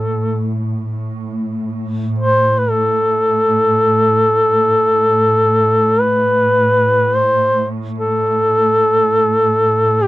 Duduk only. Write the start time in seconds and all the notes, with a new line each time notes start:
Already playing: A4
2.19 C5
2.58 B4
2.70 A4
6.00 B4
7.16 C5
7.98 A4
10.03 G4